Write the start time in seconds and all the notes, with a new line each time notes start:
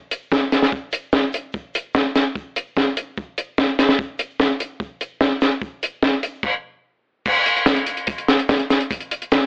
0.11 closed hi-hat, shaker
0.22 shaker
0.31 kick, snare, shaker
0.51 snare, closed hi-hat, shaker
0.62 snare
0.72 kick, shaker
0.92 closed hi-hat, shaker
1.12 kick, snare, shaker
1.32 closed hi-hat, shaker
1.53 kick, shaker
1.74 closed hi-hat, shaker
1.94 kick, snare, shaker
2.15 snare, closed hi-hat, shaker
2.35 kick, shaker
2.56 closed hi-hat, shaker
2.66 shaker
2.76 kick, snare, shaker
2.96 closed hi-hat, shaker
3.17 kick, shaker
3.38 closed hi-hat, shaker
3.58 kick, snare, shaker
3.79 snare, closed hi-hat, shaker
3.89 snare
3.99 kick, shaker
4.19 closed hi-hat, shaker
4.30 shaker
4.40 kick, snare, shaker
4.60 closed hi-hat, shaker
4.80 kick, shaker
5.01 closed hi-hat, shaker
5.21 kick, snare, shaker
5.41 snare, closed hi-hat, shaker
5.52 shaker
5.62 kick, shaker
5.83 closed hi-hat, shaker
5.93 shaker
6.03 kick, snare, shaker
6.23 closed hi-hat, shaker
6.34 shaker
6.43 kick, crash
7.26 kick, crash, shaker
7.46 closed hi-hat, shaker
7.56 closed hi-hat
7.66 kick, snare, closed hi-hat, shaker
7.76 closed hi-hat
7.86 closed hi-hat, shaker
7.97 closed hi-hat
8.07 kick, closed hi-hat, shaker
8.18 closed hi-hat
8.28 snare, closed hi-hat, shaker
8.39 closed hi-hat
8.48 kick, snare, closed hi-hat, shaker
8.59 closed hi-hat
8.70 snare, closed hi-hat, shaker
8.81 closed hi-hat
8.90 kick, closed hi-hat, shaker
9.00 closed hi-hat
9.11 closed hi-hat, shaker
9.22 closed hi-hat
9.31 kick, snare, closed hi-hat, shaker